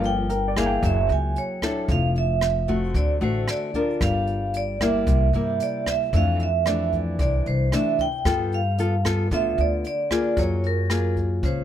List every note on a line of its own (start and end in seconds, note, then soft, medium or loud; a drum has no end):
0.00 0.79 G1 loud
0.00 0.80 G2 medium
0.00 0.30 F3 medium
0.00 0.30 A#3 medium
0.00 0.30 D4 medium
0.00 closed hi-hat soft
0.06 0.54 G5 medium
0.29 1.05 A#4 soft
0.29 closed hi-hat soft
0.48 0.82 D5 soft
0.56 1.58 A#3 medium
0.56 1.58 E4 medium
0.56 1.58 G#4 medium
0.56 0.85 F5 medium
0.56 kick soft
0.56 cross-stick medium
0.56 closed hi-hat soft
0.66 1.37 G5 soft
0.82 1.07 F#1 medium
0.82 1.86 F#3 medium
0.82 1.11 E5 loud
0.82 kick medium
0.82 closed hi-hat soft
1.09 1.34 C#2 medium
1.09 1.38 G#5 medium
1.09 closed hi-hat soft
1.36 1.92 C#5 medium
1.36 closed hi-hat soft
1.62 2.38 D4 medium
1.62 2.38 E4 medium
1.62 2.38 A4 medium
1.62 kick soft
1.62 cross-stick medium
1.62 closed hi-hat soft
1.88 2.91 F1 medium
1.88 2.92 F3 medium
1.88 2.03 F5 medium
1.88 kick medium
1.88 closed hi-hat soft
2.15 2.66 E5 medium
2.15 closed hi-hat soft
2.41 cross-stick medium
2.41 closed hi-hat soft
2.68 3.17 A3 medium
2.68 3.17 C4 medium
2.68 3.17 F#4 medium
2.68 kick soft
2.68 closed hi-hat soft
2.94 3.19 D2 medium
2.94 3.98 D3 soft
2.94 3.08 D5 medium
2.94 kick soft
2.94 closed hi-hat soft
3.21 3.46 A1 medium
3.21 3.70 A3 medium
3.21 3.70 C4 medium
3.21 3.70 F#4 medium
3.21 3.35 C5 medium
3.21 closed hi-hat soft
3.48 4.03 D5 medium
3.48 cross-stick medium
3.48 closed hi-hat soft
3.74 4.76 D4 medium
3.74 4.77 F4 medium
3.74 4.77 A#4 medium
3.74 kick soft
3.74 closed hi-hat soft
4.01 5.03 G1 loud
4.01 4.80 G3 medium
4.01 4.56 F5 medium
4.01 kick medium
4.01 cross-stick medium
4.01 closed hi-hat soft
4.27 closed hi-hat soft
4.54 4.82 D5 medium
4.54 closed hi-hat soft
4.80 5.29 G3 medium
4.80 5.30 A#3 medium
4.80 5.30 E4 medium
4.80 5.84 E5 medium
4.80 kick soft
4.80 cross-stick medium
4.80 closed hi-hat soft
5.07 5.31 C2 medium
5.07 6.11 C3 medium
5.07 kick medium
5.07 closed hi-hat soft
5.33 5.58 G2 medium
5.33 6.09 G3 medium
5.33 6.09 A#3 medium
5.33 6.09 E4 medium
5.33 closed hi-hat soft
5.60 5.88 D5 medium
5.60 closed hi-hat soft
5.86 6.15 E5 medium
5.86 kick soft
5.86 cross-stick medium
5.86 closed hi-hat soft
6.13 7.15 F2 medium
6.13 7.16 F2 medium
6.13 6.47 E3 medium
6.13 6.47 A3 soft
6.13 6.48 D4 medium
6.13 6.42 F5 medium
6.13 kick medium
6.13 closed hi-hat soft
6.39 6.91 E5 medium
6.39 closed hi-hat soft
6.66 7.68 E3 soft
6.66 7.68 A3 medium
6.66 7.68 D4 medium
6.66 8.40 D5 soft
6.66 cross-stick medium
6.66 closed hi-hat soft
6.92 kick soft
6.92 closed hi-hat soft
7.19 7.44 C2 medium
7.19 8.22 C3 medium
7.19 7.44 D5 medium
7.19 kick medium
7.19 closed hi-hat soft
7.46 7.70 C2 medium
7.46 7.74 C5 medium
7.46 closed hi-hat soft
7.72 8.06 E3 soft
7.72 8.07 A3 medium
7.72 8.07 D4 medium
7.72 8.00 E5 medium
7.72 cross-stick medium
7.72 closed hi-hat soft
7.99 8.54 G5 medium
7.99 kick soft
7.99 closed hi-hat soft
8.25 9.27 G2 medium
8.25 9.28 G3 medium
8.25 8.59 B3 medium
8.25 8.59 F4 medium
8.25 8.60 A4 medium
8.25 kick medium
8.25 cross-stick medium
8.25 closed hi-hat soft
8.52 9.02 F5 medium
8.52 closed hi-hat soft
8.78 8.94 B3 medium
8.78 8.94 F4 soft
8.78 8.94 A4 soft
8.78 closed hi-hat soft
9.04 9.27 B3 medium
9.04 9.27 F4 medium
9.04 9.27 A4 medium
9.04 kick soft
9.04 cross-stick medium
9.04 closed hi-hat soft
9.31 9.56 D2 medium
9.31 10.35 D3 medium
9.31 9.84 B3 medium
9.31 9.84 F4 medium
9.31 9.84 A4 medium
9.31 9.60 E5 loud
9.31 kick medium
9.31 closed hi-hat soft
9.58 9.82 D2 medium
9.58 9.86 D5 medium
9.58 closed hi-hat soft
9.84 10.12 D5 medium
9.84 closed hi-hat soft
10.11 10.86 A#3 medium
10.11 10.86 F4 medium
10.11 10.86 G#4 medium
10.11 10.39 D5 medium
10.11 kick soft
10.11 cross-stick medium
10.11 closed hi-hat soft
10.37 11.39 F#2 loud
10.37 11.41 F#3 medium
10.37 10.65 C#5 medium
10.37 kick medium
10.37 closed hi-hat soft
10.64 11.15 A#4 medium
10.64 closed hi-hat soft
10.90 11.64 A#3 medium
10.90 11.64 F4 medium
10.90 11.64 G#4 medium
10.90 cross-stick medium
10.90 closed hi-hat soft
11.17 kick soft
11.17 closed hi-hat soft
11.43 11.64 C#2 medium
11.43 11.64 C#3 medium
11.43 11.64 C5 medium
11.43 kick medium
11.43 closed hi-hat soft